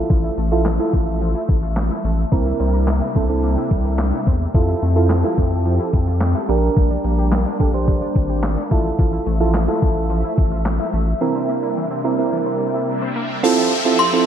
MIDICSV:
0, 0, Header, 1, 8, 480
1, 0, Start_track
1, 0, Key_signature, -1, "major"
1, 0, Tempo, 555556
1, 88, Time_signature, 4, 2, 24, 8
1, 12321, End_track
2, 0, Start_track
2, 0, Title_t, "Synth bell"
2, 0, Program_c, 0, 98
2, 12087, Note_on_c, 0, 84, 102
2, 12321, Note_off_c, 0, 84, 0
2, 12321, End_track
3, 0, Start_track
3, 0, Title_t, "Synth keys"
3, 0, Program_c, 1, 88
3, 0, Note_on_c, 1, 64, 93
3, 0, Note_on_c, 1, 65, 86
3, 0, Note_on_c, 1, 69, 102
3, 325, Note_off_c, 1, 64, 0
3, 326, Note_off_c, 1, 65, 0
3, 327, Note_off_c, 1, 69, 0
3, 445, Note_on_c, 1, 64, 84
3, 446, Note_on_c, 1, 65, 80
3, 449, Note_on_c, 1, 69, 98
3, 610, Note_off_c, 1, 64, 0
3, 611, Note_off_c, 1, 65, 0
3, 612, Note_off_c, 1, 69, 0
3, 686, Note_on_c, 1, 64, 88
3, 688, Note_on_c, 1, 65, 78
3, 691, Note_on_c, 1, 69, 96
3, 1341, Note_off_c, 1, 64, 0
3, 1342, Note_off_c, 1, 65, 0
3, 1343, Note_off_c, 1, 69, 0
3, 2002, Note_on_c, 1, 60, 83
3, 2005, Note_on_c, 1, 64, 77
3, 2008, Note_on_c, 1, 70, 98
3, 2496, Note_off_c, 1, 60, 0
3, 2497, Note_off_c, 1, 64, 0
3, 2499, Note_off_c, 1, 70, 0
3, 2726, Note_on_c, 1, 60, 87
3, 2727, Note_on_c, 1, 64, 79
3, 2729, Note_on_c, 1, 69, 95
3, 2809, Note_off_c, 1, 60, 0
3, 2809, Note_off_c, 1, 64, 0
3, 2810, Note_off_c, 1, 69, 0
3, 2845, Note_on_c, 1, 60, 83
3, 2848, Note_on_c, 1, 64, 78
3, 2850, Note_on_c, 1, 69, 97
3, 3501, Note_off_c, 1, 60, 0
3, 3502, Note_off_c, 1, 64, 0
3, 3503, Note_off_c, 1, 69, 0
3, 3926, Note_on_c, 1, 64, 91
3, 3928, Note_on_c, 1, 65, 79
3, 3929, Note_on_c, 1, 69, 94
3, 4172, Note_off_c, 1, 64, 0
3, 4173, Note_off_c, 1, 65, 0
3, 4174, Note_off_c, 1, 69, 0
3, 4284, Note_on_c, 1, 64, 87
3, 4286, Note_on_c, 1, 65, 78
3, 4289, Note_on_c, 1, 69, 96
3, 4450, Note_off_c, 1, 64, 0
3, 4450, Note_off_c, 1, 65, 0
3, 4452, Note_off_c, 1, 69, 0
3, 4527, Note_on_c, 1, 64, 82
3, 4530, Note_on_c, 1, 65, 78
3, 4531, Note_on_c, 1, 69, 94
3, 5181, Note_off_c, 1, 64, 0
3, 5183, Note_off_c, 1, 65, 0
3, 5184, Note_off_c, 1, 69, 0
3, 5606, Note_on_c, 1, 62, 94
3, 5608, Note_on_c, 1, 67, 86
3, 5610, Note_on_c, 1, 70, 101
3, 6375, Note_off_c, 1, 62, 0
3, 6376, Note_off_c, 1, 67, 0
3, 6377, Note_off_c, 1, 70, 0
3, 6566, Note_on_c, 1, 62, 85
3, 6568, Note_on_c, 1, 67, 83
3, 6570, Note_on_c, 1, 69, 101
3, 6648, Note_off_c, 1, 62, 0
3, 6650, Note_off_c, 1, 67, 0
3, 6651, Note_off_c, 1, 69, 0
3, 6686, Note_on_c, 1, 62, 85
3, 6689, Note_on_c, 1, 67, 78
3, 6690, Note_on_c, 1, 72, 95
3, 7341, Note_off_c, 1, 62, 0
3, 7343, Note_off_c, 1, 67, 0
3, 7343, Note_off_c, 1, 72, 0
3, 7526, Note_on_c, 1, 64, 94
3, 7529, Note_on_c, 1, 65, 87
3, 7531, Note_on_c, 1, 69, 110
3, 8007, Note_off_c, 1, 64, 0
3, 8008, Note_off_c, 1, 65, 0
3, 8009, Note_off_c, 1, 69, 0
3, 8125, Note_on_c, 1, 64, 88
3, 8127, Note_on_c, 1, 65, 78
3, 8129, Note_on_c, 1, 69, 99
3, 8290, Note_off_c, 1, 64, 0
3, 8291, Note_off_c, 1, 65, 0
3, 8292, Note_off_c, 1, 69, 0
3, 8365, Note_on_c, 1, 64, 90
3, 8366, Note_on_c, 1, 65, 80
3, 8369, Note_on_c, 1, 69, 97
3, 9020, Note_off_c, 1, 64, 0
3, 9021, Note_off_c, 1, 65, 0
3, 9022, Note_off_c, 1, 69, 0
3, 9686, Note_on_c, 1, 60, 92
3, 9688, Note_on_c, 1, 64, 80
3, 9690, Note_on_c, 1, 70, 101
3, 10177, Note_off_c, 1, 60, 0
3, 10178, Note_off_c, 1, 64, 0
3, 10180, Note_off_c, 1, 70, 0
3, 10404, Note_on_c, 1, 60, 90
3, 10407, Note_on_c, 1, 64, 78
3, 10409, Note_on_c, 1, 70, 98
3, 10488, Note_off_c, 1, 60, 0
3, 10489, Note_off_c, 1, 64, 0
3, 10490, Note_off_c, 1, 70, 0
3, 10528, Note_on_c, 1, 60, 86
3, 10531, Note_on_c, 1, 64, 81
3, 10532, Note_on_c, 1, 70, 99
3, 11182, Note_off_c, 1, 60, 0
3, 11184, Note_off_c, 1, 64, 0
3, 11184, Note_off_c, 1, 70, 0
3, 11606, Note_on_c, 1, 60, 91
3, 11607, Note_on_c, 1, 64, 85
3, 11608, Note_on_c, 1, 65, 86
3, 11610, Note_on_c, 1, 69, 104
3, 11852, Note_off_c, 1, 60, 0
3, 11853, Note_off_c, 1, 64, 0
3, 11853, Note_off_c, 1, 65, 0
3, 11854, Note_off_c, 1, 69, 0
3, 11969, Note_on_c, 1, 60, 80
3, 11969, Note_on_c, 1, 64, 70
3, 11971, Note_on_c, 1, 65, 72
3, 11972, Note_on_c, 1, 69, 83
3, 12132, Note_off_c, 1, 60, 0
3, 12132, Note_off_c, 1, 64, 0
3, 12133, Note_off_c, 1, 65, 0
3, 12133, Note_off_c, 1, 69, 0
3, 12207, Note_on_c, 1, 60, 78
3, 12209, Note_on_c, 1, 64, 72
3, 12211, Note_on_c, 1, 65, 70
3, 12212, Note_on_c, 1, 69, 84
3, 12321, Note_off_c, 1, 60, 0
3, 12321, Note_off_c, 1, 64, 0
3, 12321, Note_off_c, 1, 65, 0
3, 12321, Note_off_c, 1, 69, 0
3, 12321, End_track
4, 0, Start_track
4, 0, Title_t, "Synth pluck"
4, 0, Program_c, 2, 84
4, 86, Note_on_c, 2, 53, 93
4, 157, Note_off_c, 2, 53, 0
4, 208, Note_on_c, 2, 64, 78
4, 279, Note_off_c, 2, 64, 0
4, 328, Note_on_c, 2, 57, 79
4, 398, Note_off_c, 2, 57, 0
4, 447, Note_on_c, 2, 65, 79
4, 518, Note_off_c, 2, 65, 0
4, 567, Note_on_c, 2, 53, 84
4, 637, Note_off_c, 2, 53, 0
4, 687, Note_on_c, 2, 64, 77
4, 757, Note_off_c, 2, 64, 0
4, 806, Note_on_c, 2, 57, 78
4, 877, Note_off_c, 2, 57, 0
4, 1048, Note_on_c, 2, 53, 91
4, 1119, Note_off_c, 2, 53, 0
4, 1166, Note_on_c, 2, 64, 78
4, 1237, Note_off_c, 2, 64, 0
4, 1406, Note_on_c, 2, 65, 76
4, 1477, Note_off_c, 2, 65, 0
4, 1646, Note_on_c, 2, 64, 82
4, 1717, Note_off_c, 2, 64, 0
4, 1768, Note_on_c, 2, 57, 79
4, 1838, Note_off_c, 2, 57, 0
4, 2006, Note_on_c, 2, 58, 92
4, 2077, Note_off_c, 2, 58, 0
4, 2126, Note_on_c, 2, 64, 79
4, 2197, Note_off_c, 2, 64, 0
4, 2246, Note_on_c, 2, 60, 74
4, 2317, Note_off_c, 2, 60, 0
4, 2366, Note_on_c, 2, 70, 79
4, 2437, Note_off_c, 2, 70, 0
4, 2487, Note_on_c, 2, 58, 85
4, 2558, Note_off_c, 2, 58, 0
4, 2606, Note_on_c, 2, 64, 77
4, 2677, Note_off_c, 2, 64, 0
4, 2730, Note_on_c, 2, 60, 80
4, 2800, Note_off_c, 2, 60, 0
4, 2970, Note_on_c, 2, 58, 93
4, 3040, Note_off_c, 2, 58, 0
4, 3090, Note_on_c, 2, 64, 74
4, 3160, Note_off_c, 2, 64, 0
4, 3328, Note_on_c, 2, 70, 75
4, 3398, Note_off_c, 2, 70, 0
4, 3568, Note_on_c, 2, 64, 75
4, 3639, Note_off_c, 2, 64, 0
4, 3688, Note_on_c, 2, 60, 80
4, 3758, Note_off_c, 2, 60, 0
4, 3929, Note_on_c, 2, 53, 89
4, 3999, Note_off_c, 2, 53, 0
4, 4049, Note_on_c, 2, 64, 73
4, 4119, Note_off_c, 2, 64, 0
4, 4169, Note_on_c, 2, 57, 77
4, 4239, Note_off_c, 2, 57, 0
4, 4288, Note_on_c, 2, 65, 78
4, 4358, Note_off_c, 2, 65, 0
4, 4406, Note_on_c, 2, 53, 85
4, 4477, Note_off_c, 2, 53, 0
4, 4527, Note_on_c, 2, 64, 77
4, 4598, Note_off_c, 2, 64, 0
4, 4647, Note_on_c, 2, 57, 78
4, 4718, Note_off_c, 2, 57, 0
4, 4887, Note_on_c, 2, 53, 94
4, 4958, Note_off_c, 2, 53, 0
4, 5006, Note_on_c, 2, 64, 75
4, 5077, Note_off_c, 2, 64, 0
4, 5247, Note_on_c, 2, 65, 75
4, 5318, Note_off_c, 2, 65, 0
4, 5486, Note_on_c, 2, 64, 78
4, 5557, Note_off_c, 2, 64, 0
4, 5605, Note_on_c, 2, 58, 77
4, 5676, Note_off_c, 2, 58, 0
4, 5845, Note_on_c, 2, 55, 89
4, 5916, Note_off_c, 2, 55, 0
4, 5966, Note_on_c, 2, 62, 77
4, 6037, Note_off_c, 2, 62, 0
4, 6087, Note_on_c, 2, 58, 79
4, 6158, Note_off_c, 2, 58, 0
4, 6207, Note_on_c, 2, 67, 81
4, 6278, Note_off_c, 2, 67, 0
4, 6327, Note_on_c, 2, 55, 86
4, 6398, Note_off_c, 2, 55, 0
4, 6447, Note_on_c, 2, 62, 80
4, 6518, Note_off_c, 2, 62, 0
4, 6567, Note_on_c, 2, 58, 79
4, 6638, Note_off_c, 2, 58, 0
4, 6806, Note_on_c, 2, 55, 88
4, 6877, Note_off_c, 2, 55, 0
4, 6927, Note_on_c, 2, 62, 76
4, 6998, Note_off_c, 2, 62, 0
4, 7167, Note_on_c, 2, 67, 76
4, 7238, Note_off_c, 2, 67, 0
4, 7409, Note_on_c, 2, 62, 80
4, 7479, Note_off_c, 2, 62, 0
4, 7527, Note_on_c, 2, 57, 77
4, 7598, Note_off_c, 2, 57, 0
4, 7769, Note_on_c, 2, 53, 89
4, 7839, Note_off_c, 2, 53, 0
4, 7887, Note_on_c, 2, 64, 76
4, 7957, Note_off_c, 2, 64, 0
4, 8005, Note_on_c, 2, 57, 81
4, 8076, Note_off_c, 2, 57, 0
4, 8126, Note_on_c, 2, 65, 80
4, 8197, Note_off_c, 2, 65, 0
4, 8245, Note_on_c, 2, 53, 89
4, 8317, Note_off_c, 2, 53, 0
4, 8365, Note_on_c, 2, 64, 79
4, 8436, Note_off_c, 2, 64, 0
4, 8484, Note_on_c, 2, 57, 79
4, 8556, Note_off_c, 2, 57, 0
4, 8727, Note_on_c, 2, 53, 88
4, 8797, Note_off_c, 2, 53, 0
4, 8848, Note_on_c, 2, 64, 75
4, 8918, Note_off_c, 2, 64, 0
4, 9086, Note_on_c, 2, 65, 78
4, 9157, Note_off_c, 2, 65, 0
4, 9328, Note_on_c, 2, 64, 78
4, 9398, Note_off_c, 2, 64, 0
4, 9447, Note_on_c, 2, 57, 80
4, 9518, Note_off_c, 2, 57, 0
4, 9688, Note_on_c, 2, 52, 91
4, 9758, Note_off_c, 2, 52, 0
4, 9807, Note_on_c, 2, 60, 75
4, 9878, Note_off_c, 2, 60, 0
4, 9927, Note_on_c, 2, 58, 78
4, 9998, Note_off_c, 2, 58, 0
4, 10048, Note_on_c, 2, 64, 78
4, 10118, Note_off_c, 2, 64, 0
4, 10168, Note_on_c, 2, 52, 88
4, 10239, Note_off_c, 2, 52, 0
4, 10289, Note_on_c, 2, 60, 81
4, 10359, Note_off_c, 2, 60, 0
4, 10410, Note_on_c, 2, 58, 78
4, 10480, Note_off_c, 2, 58, 0
4, 10649, Note_on_c, 2, 52, 93
4, 10719, Note_off_c, 2, 52, 0
4, 10769, Note_on_c, 2, 60, 75
4, 10839, Note_off_c, 2, 60, 0
4, 11009, Note_on_c, 2, 64, 81
4, 11079, Note_off_c, 2, 64, 0
4, 11248, Note_on_c, 2, 60, 78
4, 11319, Note_off_c, 2, 60, 0
4, 11368, Note_on_c, 2, 58, 81
4, 11439, Note_off_c, 2, 58, 0
4, 12321, End_track
5, 0, Start_track
5, 0, Title_t, "Supersaw synth"
5, 0, Program_c, 3, 81
5, 0, Note_on_c, 3, 53, 86
5, 0, Note_on_c, 3, 57, 76
5, 0, Note_on_c, 3, 76, 94
5, 1985, Note_off_c, 3, 53, 0
5, 1985, Note_off_c, 3, 76, 0
5, 1986, Note_off_c, 3, 57, 0
5, 2006, Note_on_c, 3, 48, 81
5, 2006, Note_on_c, 3, 55, 74
5, 2006, Note_on_c, 3, 58, 73
5, 2006, Note_on_c, 3, 62, 73
5, 2007, Note_on_c, 3, 76, 89
5, 3908, Note_off_c, 3, 48, 0
5, 3908, Note_off_c, 3, 55, 0
5, 3908, Note_off_c, 3, 58, 0
5, 3908, Note_off_c, 3, 62, 0
5, 3927, Note_on_c, 3, 53, 81
5, 3927, Note_on_c, 3, 60, 75
5, 3927, Note_on_c, 3, 67, 76
5, 3927, Note_on_c, 3, 69, 92
5, 5573, Note_off_c, 3, 76, 0
5, 5591, Note_off_c, 3, 53, 0
5, 5591, Note_off_c, 3, 60, 0
5, 5591, Note_off_c, 3, 67, 0
5, 5591, Note_off_c, 3, 69, 0
5, 5606, Note_on_c, 3, 62, 93
5, 5607, Note_on_c, 3, 55, 85
5, 5607, Note_on_c, 3, 58, 78
5, 7508, Note_off_c, 3, 55, 0
5, 7508, Note_off_c, 3, 58, 0
5, 7508, Note_off_c, 3, 62, 0
5, 7525, Note_on_c, 3, 53, 90
5, 7525, Note_on_c, 3, 57, 80
5, 7525, Note_on_c, 3, 76, 98
5, 9665, Note_off_c, 3, 53, 0
5, 9665, Note_off_c, 3, 57, 0
5, 9685, Note_on_c, 3, 62, 73
5, 9686, Note_on_c, 3, 48, 85
5, 9686, Note_on_c, 3, 55, 75
5, 9686, Note_on_c, 3, 58, 73
5, 11572, Note_off_c, 3, 76, 0
5, 11587, Note_off_c, 3, 62, 0
5, 11588, Note_off_c, 3, 48, 0
5, 11588, Note_off_c, 3, 55, 0
5, 11588, Note_off_c, 3, 58, 0
5, 11609, Note_on_c, 3, 53, 86
5, 11610, Note_on_c, 3, 60, 79
5, 11610, Note_on_c, 3, 67, 79
5, 11610, Note_on_c, 3, 69, 95
5, 11610, Note_on_c, 3, 76, 80
5, 12321, Note_off_c, 3, 53, 0
5, 12321, Note_off_c, 3, 60, 0
5, 12321, Note_off_c, 3, 67, 0
5, 12321, Note_off_c, 3, 69, 0
5, 12321, Note_off_c, 3, 76, 0
5, 12321, End_track
6, 0, Start_track
6, 0, Title_t, "Sub bass"
6, 0, Program_c, 4, 38
6, 87, Note_on_c, 4, 33, 108
6, 266, Note_off_c, 4, 33, 0
6, 324, Note_on_c, 4, 33, 98
6, 683, Note_off_c, 4, 33, 0
6, 807, Note_on_c, 4, 33, 91
6, 1165, Note_off_c, 4, 33, 0
6, 1286, Note_on_c, 4, 33, 99
6, 1644, Note_off_c, 4, 33, 0
6, 1765, Note_on_c, 4, 33, 98
6, 1945, Note_off_c, 4, 33, 0
6, 2006, Note_on_c, 4, 36, 100
6, 2185, Note_off_c, 4, 36, 0
6, 2247, Note_on_c, 4, 36, 103
6, 2605, Note_off_c, 4, 36, 0
6, 2727, Note_on_c, 4, 36, 89
6, 3085, Note_off_c, 4, 36, 0
6, 3206, Note_on_c, 4, 36, 100
6, 3564, Note_off_c, 4, 36, 0
6, 3688, Note_on_c, 4, 40, 92
6, 3867, Note_off_c, 4, 40, 0
6, 3926, Note_on_c, 4, 41, 102
6, 4106, Note_off_c, 4, 41, 0
6, 4168, Note_on_c, 4, 41, 105
6, 4525, Note_off_c, 4, 41, 0
6, 4647, Note_on_c, 4, 41, 86
6, 5005, Note_off_c, 4, 41, 0
6, 5126, Note_on_c, 4, 41, 105
6, 5484, Note_off_c, 4, 41, 0
6, 5606, Note_on_c, 4, 34, 95
6, 5786, Note_off_c, 4, 34, 0
6, 5846, Note_on_c, 4, 34, 101
6, 6025, Note_off_c, 4, 34, 0
6, 6085, Note_on_c, 4, 34, 98
6, 6443, Note_off_c, 4, 34, 0
6, 6566, Note_on_c, 4, 34, 89
6, 6924, Note_off_c, 4, 34, 0
6, 7046, Note_on_c, 4, 32, 101
6, 7404, Note_off_c, 4, 32, 0
6, 7528, Note_on_c, 4, 33, 96
6, 7707, Note_off_c, 4, 33, 0
6, 7766, Note_on_c, 4, 33, 105
6, 7946, Note_off_c, 4, 33, 0
6, 8005, Note_on_c, 4, 33, 101
6, 8363, Note_off_c, 4, 33, 0
6, 8487, Note_on_c, 4, 33, 86
6, 8845, Note_off_c, 4, 33, 0
6, 8967, Note_on_c, 4, 33, 100
6, 9325, Note_off_c, 4, 33, 0
6, 9446, Note_on_c, 4, 33, 95
6, 9626, Note_off_c, 4, 33, 0
6, 12321, End_track
7, 0, Start_track
7, 0, Title_t, "Downlifter"
7, 0, Program_c, 5, 103
7, 11610, Note_on_c, 5, 60, 86
7, 12321, Note_off_c, 5, 60, 0
7, 12321, End_track
8, 0, Start_track
8, 0, Title_t, "Drums"
8, 87, Note_on_c, 9, 36, 110
8, 87, Note_on_c, 9, 42, 98
8, 173, Note_off_c, 9, 36, 0
8, 173, Note_off_c, 9, 42, 0
8, 326, Note_on_c, 9, 42, 71
8, 412, Note_off_c, 9, 42, 0
8, 564, Note_on_c, 9, 38, 79
8, 566, Note_on_c, 9, 39, 101
8, 567, Note_on_c, 9, 42, 100
8, 651, Note_off_c, 9, 38, 0
8, 653, Note_off_c, 9, 39, 0
8, 653, Note_off_c, 9, 42, 0
8, 805, Note_on_c, 9, 42, 66
8, 807, Note_on_c, 9, 36, 90
8, 892, Note_off_c, 9, 42, 0
8, 893, Note_off_c, 9, 36, 0
8, 1045, Note_on_c, 9, 42, 83
8, 1132, Note_off_c, 9, 42, 0
8, 1286, Note_on_c, 9, 36, 101
8, 1288, Note_on_c, 9, 42, 87
8, 1373, Note_off_c, 9, 36, 0
8, 1374, Note_off_c, 9, 42, 0
8, 1524, Note_on_c, 9, 42, 81
8, 1525, Note_on_c, 9, 38, 91
8, 1528, Note_on_c, 9, 39, 113
8, 1611, Note_off_c, 9, 42, 0
8, 1612, Note_off_c, 9, 38, 0
8, 1614, Note_off_c, 9, 39, 0
8, 1646, Note_on_c, 9, 42, 52
8, 1733, Note_off_c, 9, 42, 0
8, 1767, Note_on_c, 9, 42, 76
8, 1853, Note_off_c, 9, 42, 0
8, 2006, Note_on_c, 9, 36, 112
8, 2006, Note_on_c, 9, 42, 99
8, 2092, Note_off_c, 9, 36, 0
8, 2092, Note_off_c, 9, 42, 0
8, 2245, Note_on_c, 9, 42, 70
8, 2331, Note_off_c, 9, 42, 0
8, 2484, Note_on_c, 9, 38, 81
8, 2486, Note_on_c, 9, 39, 100
8, 2487, Note_on_c, 9, 42, 102
8, 2570, Note_off_c, 9, 38, 0
8, 2572, Note_off_c, 9, 39, 0
8, 2573, Note_off_c, 9, 42, 0
8, 2724, Note_on_c, 9, 42, 63
8, 2727, Note_on_c, 9, 36, 90
8, 2810, Note_off_c, 9, 42, 0
8, 2813, Note_off_c, 9, 36, 0
8, 2964, Note_on_c, 9, 42, 85
8, 3050, Note_off_c, 9, 42, 0
8, 3206, Note_on_c, 9, 36, 98
8, 3206, Note_on_c, 9, 42, 89
8, 3292, Note_off_c, 9, 36, 0
8, 3292, Note_off_c, 9, 42, 0
8, 3443, Note_on_c, 9, 42, 81
8, 3444, Note_on_c, 9, 38, 92
8, 3446, Note_on_c, 9, 39, 117
8, 3530, Note_off_c, 9, 38, 0
8, 3530, Note_off_c, 9, 42, 0
8, 3533, Note_off_c, 9, 39, 0
8, 3565, Note_on_c, 9, 42, 52
8, 3652, Note_off_c, 9, 42, 0
8, 3686, Note_on_c, 9, 42, 75
8, 3688, Note_on_c, 9, 36, 96
8, 3772, Note_off_c, 9, 42, 0
8, 3775, Note_off_c, 9, 36, 0
8, 3926, Note_on_c, 9, 42, 100
8, 3927, Note_on_c, 9, 36, 118
8, 4012, Note_off_c, 9, 42, 0
8, 4013, Note_off_c, 9, 36, 0
8, 4166, Note_on_c, 9, 42, 70
8, 4252, Note_off_c, 9, 42, 0
8, 4404, Note_on_c, 9, 38, 83
8, 4406, Note_on_c, 9, 39, 101
8, 4407, Note_on_c, 9, 42, 105
8, 4490, Note_off_c, 9, 38, 0
8, 4493, Note_off_c, 9, 39, 0
8, 4493, Note_off_c, 9, 42, 0
8, 4645, Note_on_c, 9, 42, 64
8, 4648, Note_on_c, 9, 36, 94
8, 4731, Note_off_c, 9, 42, 0
8, 4734, Note_off_c, 9, 36, 0
8, 4885, Note_on_c, 9, 42, 84
8, 4972, Note_off_c, 9, 42, 0
8, 5127, Note_on_c, 9, 36, 96
8, 5128, Note_on_c, 9, 42, 87
8, 5213, Note_off_c, 9, 36, 0
8, 5214, Note_off_c, 9, 42, 0
8, 5364, Note_on_c, 9, 42, 81
8, 5365, Note_on_c, 9, 38, 91
8, 5367, Note_on_c, 9, 39, 114
8, 5450, Note_off_c, 9, 42, 0
8, 5451, Note_off_c, 9, 38, 0
8, 5453, Note_off_c, 9, 39, 0
8, 5487, Note_on_c, 9, 42, 54
8, 5573, Note_off_c, 9, 42, 0
8, 5607, Note_on_c, 9, 42, 76
8, 5694, Note_off_c, 9, 42, 0
8, 5846, Note_on_c, 9, 36, 121
8, 5846, Note_on_c, 9, 42, 96
8, 5933, Note_off_c, 9, 36, 0
8, 5933, Note_off_c, 9, 42, 0
8, 6084, Note_on_c, 9, 42, 72
8, 6171, Note_off_c, 9, 42, 0
8, 6325, Note_on_c, 9, 38, 83
8, 6327, Note_on_c, 9, 39, 103
8, 6328, Note_on_c, 9, 42, 102
8, 6411, Note_off_c, 9, 38, 0
8, 6414, Note_off_c, 9, 39, 0
8, 6414, Note_off_c, 9, 42, 0
8, 6565, Note_on_c, 9, 42, 66
8, 6567, Note_on_c, 9, 36, 93
8, 6651, Note_off_c, 9, 42, 0
8, 6653, Note_off_c, 9, 36, 0
8, 6805, Note_on_c, 9, 42, 83
8, 6807, Note_on_c, 9, 36, 98
8, 6892, Note_off_c, 9, 42, 0
8, 6893, Note_off_c, 9, 36, 0
8, 7046, Note_on_c, 9, 36, 96
8, 7049, Note_on_c, 9, 42, 89
8, 7133, Note_off_c, 9, 36, 0
8, 7135, Note_off_c, 9, 42, 0
8, 7284, Note_on_c, 9, 42, 83
8, 7285, Note_on_c, 9, 38, 89
8, 7287, Note_on_c, 9, 39, 111
8, 7371, Note_off_c, 9, 38, 0
8, 7371, Note_off_c, 9, 42, 0
8, 7374, Note_off_c, 9, 39, 0
8, 7407, Note_on_c, 9, 42, 55
8, 7494, Note_off_c, 9, 42, 0
8, 7527, Note_on_c, 9, 46, 75
8, 7528, Note_on_c, 9, 36, 92
8, 7613, Note_off_c, 9, 46, 0
8, 7614, Note_off_c, 9, 36, 0
8, 7765, Note_on_c, 9, 42, 96
8, 7766, Note_on_c, 9, 36, 115
8, 7852, Note_off_c, 9, 36, 0
8, 7852, Note_off_c, 9, 42, 0
8, 8004, Note_on_c, 9, 42, 74
8, 8091, Note_off_c, 9, 42, 0
8, 8244, Note_on_c, 9, 38, 84
8, 8246, Note_on_c, 9, 39, 102
8, 8247, Note_on_c, 9, 42, 100
8, 8330, Note_off_c, 9, 38, 0
8, 8333, Note_off_c, 9, 39, 0
8, 8333, Note_off_c, 9, 42, 0
8, 8485, Note_on_c, 9, 42, 68
8, 8487, Note_on_c, 9, 36, 92
8, 8571, Note_off_c, 9, 42, 0
8, 8573, Note_off_c, 9, 36, 0
8, 8726, Note_on_c, 9, 42, 83
8, 8812, Note_off_c, 9, 42, 0
8, 8967, Note_on_c, 9, 36, 101
8, 8968, Note_on_c, 9, 42, 89
8, 9053, Note_off_c, 9, 36, 0
8, 9055, Note_off_c, 9, 42, 0
8, 9206, Note_on_c, 9, 42, 81
8, 9207, Note_on_c, 9, 38, 91
8, 9209, Note_on_c, 9, 39, 113
8, 9292, Note_off_c, 9, 42, 0
8, 9293, Note_off_c, 9, 38, 0
8, 9295, Note_off_c, 9, 39, 0
8, 9329, Note_on_c, 9, 42, 56
8, 9415, Note_off_c, 9, 42, 0
8, 9449, Note_on_c, 9, 46, 78
8, 9535, Note_off_c, 9, 46, 0
8, 12321, End_track
0, 0, End_of_file